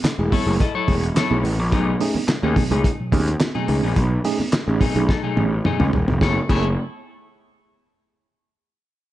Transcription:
0.04 muted picked electric bass stroke, snare, clap, closed hi-hat, muted conga
0.19 picked electric bass E1, tine electric piano A3 E4 G#4
0.32 tine electric piano F#3, clean electric guitar E4 A4 C#5, kick, open hi-hat, muted conga, high conga, low conga
0.46 picked electric bass F#1, tine electric piano A3 E4 G#4
0.60 clean electric guitar E4 A4 D#5, tine electric piano E4 G#4, kick, closed hi-hat, muted conga
0.75 tine electric piano F#3, clean electric guitar E4 A4 C#5
0.88 picked electric bass E1, tine electric piano A3 E4 G#4, kick, open hi-hat, muted conga, high conga
1.03 closed hi-hat
1.15 tine electric piano F#3, clean electric guitar E4 A4 C#5, snare, clap, closed hi-hat, muted conga, high conga
1.31 picked electric bass B1, tine electric piano A3 E4 G#4, high conga
1.44 picked electric bass A1, tine electric piano E4 G#4, open hi-hat, muted conga, low conga
1.58 picked electric bass A#1, high conga
1.72 picked electric bass B1, tine electric piano B2 F#3, clean electric guitar A3 D#4 G#4, kick, closed hi-hat, muted conga, low conga
2.00 tine electric piano A3 C#4 D#4 G#4, open hi-hat, muted conga
2.15 tine electric piano D#4 G#4, muted picked electric bass stroke, high conga
2.28 muted picked electric bass stroke, snare, clap, closed hi-hat, muted conga
2.43 picked electric bass D#2, tine electric piano A3 C#4 D#4 G#4, clean electric guitar A3 D#4 G#4
2.56 tine electric piano B2 F#3, kick, open hi-hat, high conga, low conga
2.71 picked electric bass C#2, tine electric piano A3 C#4 D#4 G#4, clean electric guitar A3 D#4 G#4, closed hi-hat
2.84 tine electric piano D#4 G#4, kick, closed hi-hat, muted conga
3.00 tine electric piano B2 F#3
3.12 picked electric bass D#2, tine electric piano A3 C#4 D#4 G#4, kick, open hi-hat, high conga
3.28 closed hi-hat
3.40 tine electric piano D#4 G#4, snare, clap, closed hi-hat, high conga
3.55 tine electric piano B2 F#3, clean electric guitar A3 D#4 G#4, high conga
3.68 picked electric bass C#2, tine electric piano A3 C#4 D#4 G#4, open hi-hat, muted conga, low conga
3.83 picked electric bass A#1, clean electric guitar A3 D#4 G#4, high conga
3.96 picked electric bass B1, tine electric piano B2 F#3, kick, closed hi-hat, low conga
4.24 tine electric piano A3 C#4 D#4 G#4, open hi-hat, muted conga
4.40 tine electric piano D#4 G#4, muted picked electric bass stroke, high conga
4.53 muted picked electric bass stroke, snare, clap, closed hi-hat
4.67 picked electric bass A1, tine electric piano A3 C#4 D#4 G#4
4.80 tine electric piano B2 F#3, clean electric guitar A3 D#4 G#4, kick, open hi-hat, high conga, low conga
4.95 picked electric bass B1, tine electric piano A3 C#4 D#4 G#4, closed hi-hat
5.09 clean electric guitar A3 D#4 A4, tine electric piano D#4 G#4, kick, snare, muted conga
5.23 tine electric piano B2 F#3, clean electric guitar A3 D#4 G#4
5.37 picked electric bass A1, tine electric piano A3 C#4 D#4 G#4, high tom, high conga
5.65 tine electric piano B2 F#3, clean electric guitar A3 D#4 G#4, mid tom, high conga
5.79 picked electric bass C#2, tine electric piano A3 C#4 D#4 G#4, mid tom, high conga
5.93 picked electric bass E1, tine electric piano D#4 G#4, floor tom, muted conga, low conga
6.08 picked electric bass F1, floor tom, high conga
6.20 picked electric bass F#1, tine electric piano A3 E4 G#4, clean electric guitar E4 A4 C#5, kick, snare, high conga
6.48 picked electric bass F#1, tine electric piano A3 E4 G#4, clean electric guitar E4 A4 C#5, kick, crash, high conga

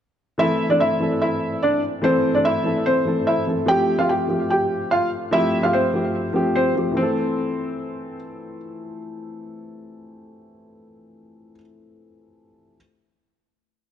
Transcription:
0.38 grand piano E3 A3 C4 A4, felt piano E4 E5
0.69 grand piano E3 A3 C4 A4, felt piano D4 D5
0.80 felt piano E4 E5
1.00 grand piano E3 A3 C4 A4
1.22 felt piano E4 E5
1.63 felt piano D4 D5
2.02 grand piano E3 A3 C4 A4, felt piano C4 C5
2.33 grand piano E3 A3 C4 A4, felt piano D4 D5
2.45 felt piano E4 E5
2.63 grand piano E3 A3 C4 A4
2.86 felt piano C4 C5
3.05 grand piano E3 A3 C4 A4
3.27 felt piano E4 E5
3.46 grand piano E3 A3 C4 A4
3.66 grand piano F3 A3 C4 G4, felt piano G4 G5
3.98 grand piano F3 A3 C4 G4, felt piano F4 F5
4.09 felt piano G4 G5
4.28 grand piano F3 A3 C4 G4
4.50 felt piano G4 G5
4.91 felt piano F4 F5
5.31 grand piano F3 A3 C4 G4, felt piano E4 E5
5.62 grand piano F3 A3 C4 G4, felt piano F4 F5
5.73 felt piano C4 C5
5.93 grand piano F3 A3 C4 G4
6.33 grand piano F3 A3 C4 G4
6.56 felt piano C4 C5
6.75 grand piano F3 A3 C4 G4
6.91 grand piano E3 A3
6.97 felt piano C4, grand piano C4
7.03 grand piano A4

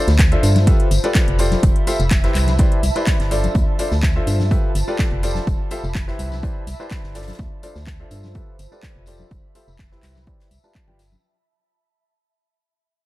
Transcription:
Already playing: ambient pad C5 A5
0.08 fm bass D2, snare, closed hi-hat, tambourine
0.19 kick, snare, clap, closed hi-hat
0.32 grand piano D4 F4 A4 C5 E5, closed hi-hat
0.43 fm bass G2, closed hi-hat, open hi-hat, tambourine
0.55 snare, closed hi-hat, tambourine, high conga
0.67 grand piano F4 G4 A4 B4 E5, ambient pad B5, kick, closed hi-hat
0.80 closed hi-hat
0.84 ambient pad E5
0.91 fm bass G1, closed hi-hat, open hi-hat, tambourine
1.04 grand piano F4 G4 A4 B4 D5, closed hi-hat, tambourine
1.11 ambient pad A5
1.15 kick, snare, clap, closed hi-hat
1.28 fm bass F1, closed hi-hat
1.39 grand piano F4 G4 A4 C5 D5, closed hi-hat, open hi-hat, tambourine
1.51 snare, closed hi-hat, tambourine, high conga
1.63 fm bass F1, kick, closed hi-hat, tambourine
1.76 closed hi-hat
1.87 grand piano F4 G4 A4 C5 E5, closed hi-hat, open hi-hat, tambourine
1.99 fm bass F1, closed hi-hat, tambourine
2.11 kick, snare, clap, closed hi-hat, tambourine
2.23 grand piano E4 G4 B4 C5 E5, snare, closed hi-hat
2.35 fm bass C2, clap, closed hi-hat, open hi-hat, tambourine
2.47 snare, closed hi-hat, tambourine, high conga
2.59 grand piano E4 G4 B4 C5 D5, kick, closed hi-hat, tambourine
2.72 closed hi-hat
2.83 fm bass C2, closed hi-hat, open hi-hat, tambourine
2.95 grand piano E4 G4 B4 C5 D5, closed hi-hat, tambourine
3.06 kick, snare, clap, closed hi-hat, tambourine
3.20 fm bass G1, snare, closed hi-hat
3.31 grand piano D4 F4 A4 C5 D5, closed hi-hat, open hi-hat, tambourine
3.44 closed hi-hat, tambourine, high conga
3.55 fm bass D2, ambient pad C5, kick, closed hi-hat, tambourine
3.66 ambient pad F4
3.79 grand piano D4 F4 A4 C5 D5, closed hi-hat, open hi-hat, tambourine
3.91 fm bass D2, snare, tambourine
4.03 kick, snare, clap, closed hi-hat, tambourine
4.16 grand piano D4 F4 A4 C5 E5
4.27 fm bass G2, closed hi-hat, open hi-hat, tambourine
4.40 snare, tambourine, high conga
4.51 grand piano F4 G4 A4 B4 E5, ambient pad B5, kick, closed hi-hat, tambourine
4.75 fm bass G1, closed hi-hat, open hi-hat, tambourine
4.88 grand piano F4 G4 A4 B4 D5, ambient pad E5, tambourine
4.99 kick, snare, clap, closed hi-hat, tambourine
5.12 fm bass F1
5.23 grand piano F4 G4 A4 C5 D5, closed hi-hat, open hi-hat, tambourine
5.35 snare, tambourine, high conga
5.47 fm bass F1, kick, closed hi-hat, tambourine
5.71 grand piano F4 G4 A4 C5 E5, closed hi-hat, open hi-hat, tambourine
5.84 fm bass F1, tambourine
5.95 kick, snare, clap, closed hi-hat
6.08 grand piano E4 G4 B4 C5 E5, snare
6.19 fm bass C2, closed hi-hat, open hi-hat, tambourine
6.32 snare, tambourine, high conga
6.42 grand piano E4 G4 B4 C5 D5, kick, closed hi-hat, tambourine
6.67 fm bass C2, closed hi-hat, open hi-hat, tambourine
6.80 grand piano E4 G4 B4 C5 D5, tambourine
6.90 kick, snare, clap, closed hi-hat, tambourine
7.04 fm bass G1, snare
7.15 grand piano D4 F4 A4 C5 D5, snare, closed hi-hat, open hi-hat, tambourine
7.22 snare, closed hi-hat
7.28 snare, closed hi-hat, tambourine, high conga
7.33 snare, closed hi-hat
7.39 fm bass D2, ambient pad C5, kick, closed hi-hat, tambourine
7.63 grand piano D4 F4 A4 C5 D5, closed hi-hat, open hi-hat, tambourine
7.75 fm bass D2, snare, tambourine
7.87 kick, snare, clap, closed hi-hat, tambourine
8.00 grand piano D4 F4 A4 C5 E5
8.11 fm bass G2, closed hi-hat, open hi-hat, tambourine
8.23 snare, tambourine, high conga
8.35 grand piano F4 G4 A4 B4 E5, ambient pad B5, kick, closed hi-hat, tambourine
8.45 ambient pad E5
8.59 fm bass G1, closed hi-hat, open hi-hat, tambourine
8.72 grand piano F4 G4 A4 B4 D5, tambourine
8.83 kick, snare, clap, closed hi-hat, tambourine
8.96 fm bass F1
9.06 grand piano F4 G4 A4 C5 D5, closed hi-hat, open hi-hat, tambourine
9.20 tambourine, high conga
9.31 fm bass F1, kick, closed hi-hat, tambourine
9.55 grand piano F4 G4 A4 C5 E5, closed hi-hat, open hi-hat, tambourine
9.68 fm bass F1, tambourine
9.79 kick, snare, clap, closed hi-hat
9.91 grand piano E4 G4 B4 C5 E5, snare
10.03 fm bass C2, snare, clap, closed hi-hat, open hi-hat, tambourine
10.15 snare, tambourine, high conga
10.27 grand piano E4 G4 B4 C5 D5, kick, closed hi-hat, tambourine
10.40 snare, closed hi-hat
10.51 fm bass C2, open hi-hat, tambourine
10.64 grand piano F4 G4 B4 D5 A5, tambourine
10.75 kick, clap, closed hi-hat
10.88 fm bass G1, grand piano F4 G4 B4 D5 G5, high conga
10.99 snare, closed hi-hat, open hi-hat, tambourine
11.12 tambourine, high conga

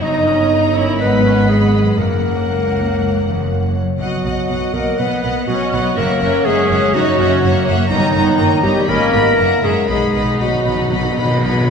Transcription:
Already playing: harp C#5, violin section C#5
0.01 double bass section G1, cello section G2, harp G2, viola section D#4, french horn section D#4, violin section D#5 A#5, clarinet D#5
0.19 harp A#3
0.26 viola section C#4
0.34 harp C#5
0.50 viola section D#4, harp A#4
0.67 harp C#5
0.75 french horn section C#4, viola section E4, clarinet C#5
0.83 harp A#3
0.99 double bass section G#1, cello section G#2, harp G#2, french horn section B3, viola section D#4, clarinet B4, violin section D#5 F#5 B5
1.17 harp F#3
1.24 viola section C#4
1.33 harp B4
1.48 french horn section G#3, viola section B3, harp F#4, clarinet G#4
1.65 harp B4
1.82 harp F#3
1.98 double bass section F#1, harp F#2, cello section F#2, timpani F#2, viola section A#3, french horn section A#3, clarinet A#4, violin section F#5
2.16 harp F#3
2.33 harp C#5
2.49 cello section C#2, harp F#4
2.66 harp C#5
2.83 harp F#3
3.00 harp C#3
3.16 harp F#3
3.24 cello section E2
3.33 harp C#5
3.49 cello section F#2, harp F#4
3.67 harp C#5
3.84 harp F#3
3.99 double bass section B1, cello section B2, harp B2, french horn section F#3, clarinet F#4, violin section D#5 F#5
4.16 harp F#3
4.24 double bass section B1, cello section B2, violin section D#5 F#5
4.33 harp D#5
4.49 double bass section B1, cello section B2, harp F#4, violin section D#5 F#5
4.67 harp D#5
4.73 double bass section B1, cello section B2, french horn section A#3, clarinet A#4, violin section D#5 F#5
4.83 harp F#3
4.97 double bass section B1, cello section B2, viola section B3, harp B3, french horn section B3, clarinet B4, violin section D#5 F#5
5.15 harp F#3
5.23 double bass section B1, cello section B2, violin section D#5 F#5
5.33 harp D#5
5.47 double bass section B1, cello section B2, french horn section F#3, viola section C#4, clarinet F#4, harp F#4, violin section D#5 F#5
5.65 harp D#5
5.72 double bass section B1, cello section B2, viola section B3, violin section D#5 F#5
5.81 harp F#3
5.96 double bass section F#1, cello section F#2, harp F#2, french horn section A#3, viola section A#3, clarinet A#4, violin section C#5 E5 F#5
6.14 harp F#3
6.19 double bass section F#1, cello section F#2, viola section C#4, violin section C#5 E5 F#5
6.30 harp C#5
6.44 double bass section F#1, cello section F#2, harp F#4, clarinet G#4, violin section C#5 E5 F#5
6.49 french horn section G#3
6.63 harp C#5
6.69 double bass section F#1, cello section F#2, violin section C#5 E5 F#5
6.80 harp F#3
6.94 double bass section F#1, cello section F#2, harp C#3, french horn section F#3, viola section D#4, clarinet F#4, violin section C#5 E5 F#5
7.11 harp F#3
7.19 double bass section F#1, cello section F#2, viola section C#4, violin section C#5 E5 F#5
7.28 harp C#5
7.43 double bass section F#1, cello section F#2, viola section A#3, harp F#4, violin section C#5 E5 F#5
7.59 harp C#5
7.66 double bass section F#1, cello section F#2, violin section C#5 E5 F#5
7.76 harp F#3
7.89 double bass section G1, harp G2, cello section G2, french horn section D#3, viola section G3, clarinet D#4, violin section C#5 D#5 A#5
8.07 harp A#3
8.14 double bass section G1, cello section G2, viola section B3, violin section C#5 D#5 A#5
8.23 harp C#5
8.38 double bass section G1, cello section G2, viola section A#3, harp A#4, violin section C#5 D#5 A#5
8.56 harp C#5
8.62 double bass section G1, cello section G2, french horn section G3, viola section D#4, clarinet G4, violin section C#5 D#5 A#5
8.73 harp A#3
8.87 double bass section G#1, harp G#2, cello section G#2, french horn section A#3, viola section C#4, clarinet A#4, violin section D#5 B5
9.05 harp G#3
9.12 double bass section G#1, cello section G#2, viola section B3, violin section D#5 B5
9.22 harp D#4 B4
9.37 double bass section F#1, harp F#2, cello section F#2, viola section A#3, violin section E5 F#5 A#5
9.55 harp G#3
9.63 double bass section F#1, cello section F#2, french horn section G#3, viola section C#4, clarinet G#4, violin section E5 F#5 A#5
9.72 harp E4 A#4
9.88 double bass section B1, harp B2, timpani B2, cello section B2, french horn section G#3, viola section D#4, clarinet G#4, violin section D#5 F#5 B5
9.97 timpani B2
10.04 timpani B2, harp B3
10.12 double bass section B1, timpani B2, cello section B2, violin section D#5 F#5 B5
10.19 timpani B2
10.26 timpani B2
10.33 timpani B2
10.39 double bass section B1, timpani B2, cello section B2, french horn section F#3, harp D#4, clarinet F#4, violin section D#5 F#5 B5
10.46 timpani B2
10.53 timpani B2
10.57 timpani B2, harp B4
10.65 double bass section B1, cello section B2, timpani B2, violin section D#5 F#5 B5
10.75 timpani B2, harp B3
10.82 timpani B2
10.89 double bass section B1, timpani B2, cello section B2, harp F#3, violin section D#5 F#5 B5
10.96 timpani B2
11.03 timpani B2
11.09 timpani B2, harp B3
11.17 double bass section B1, timpani B2, cello section B2, violin section D#5 F#5 B5
11.25 timpani B2, harp B4
11.31 timpani B2
11.38 timpani B2
11.42 double bass section B1, cello section B2, timpani B2, harp D#4, violin section D#5 F#5 B5
11.53 timpani B2
11.61 timpani B2, harp B4

